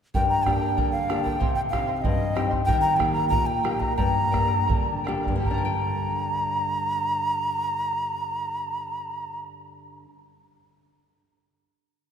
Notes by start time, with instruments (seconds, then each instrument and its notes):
0.14 nylon-string guitar G2, charango G4 A#4 D5 G5 A#5, quena G5, bombo low
0.29 quena A#5
0.44 nylon-string guitar A#3 D4 G4, charango A#4 D5 G5 A#5, quena G5, bombo rim, bombo low
0.61 charango A#4 D5 A#5
0.77 nylon-string guitar D3, charango A#4 D5 G5 A#5, bombo low
0.92 quena F5
1.08 nylon-string guitar A#3 D4 G4, charango A#4 D5 G5 A#5, bombo rim
1.24 charango A#4 D5 A#5, quena G5, bombo low
1.40 nylon-string guitar C3, charango G4 C5 D#5 G5 C6, bombo low
1.55 quena G5
1.70 nylon-string guitar C4 D#4 G4, charango C5 D#5 G5 C6, quena F5, bombo rim, bombo low
1.87 charango C5 D#5 C6
1.96 quena F5
2.02 nylon-string guitar G2, charango C5 D#5 G5 C6, quena D#5, bombo low
2.35 nylon-string guitar C4 D#4 G4, charango C5 D#5 G5 C6, bombo rim
2.51 charango C5 D#5 C6, bombo low
2.65 nylon-string guitar D#3, charango G4 A#4 D#5 G5 A#5, quena G5, bombo low
2.81 quena A#5
2.97 nylon-string guitar A#3 D#4 G4, charango A#4 D#5 G5 A#5, quena G5, bombo rim, bombo low
3.13 charango A#4 D#5 A#5, quena A#5
3.29 nylon-string guitar A#2, charango A#4 D#5 G5 A#5, quena A#5, bombo low
3.46 quena G5
3.63 nylon-string guitar A#3 D#4 G4, charango A#4 D#5 G5 A#5, bombo rim
3.79 charango A#4 D#5 A#5, quena A#5, bombo low
3.97 nylon-string guitar G2, charango G4 A#4 D5 G5 A#5, quena A#5, bombo low
4.31 nylon-string guitar A#3 D4 G4, charango A#4 D5 G5 A#5, bombo rim, bombo low
4.49 charango A#4 D5 A#5
4.68 nylon-string guitar D3, charango A#4 D5 G5 A#5, bombo low
5.04 nylon-string guitar A#3 D4, charango A#4 D5 G5 A#5, bombo rim
5.08 nylon-string guitar G4
5.23 charango A#4 D5 A#5, bombo low
5.28 nylon-string guitar G2
5.36 nylon-string guitar D3
5.40 nylon-string guitar G3, charango G4
5.45 charango A#4 G5, quena A#5, bombo low
5.50 nylon-string guitar D4, charango D5 A#5
5.58 nylon-string guitar A#4
5.65 nylon-string guitar G5